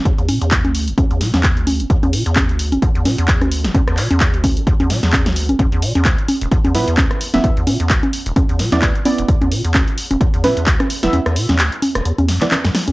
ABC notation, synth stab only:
X:1
M:4/4
L:1/16
Q:"Swing 16ths" 1/4=130
K:Clyd
V:1 name="Synth stab"
z16 | z16 | z16 | z8 z2 [B,EB] z4 [B,Ee] |
z8 z3 [B,Ed] z2 [B,Ed]2 | z8 z2 [B,EB] z4 [B,Ee] | z8 z3 [B,Ed] z4 |]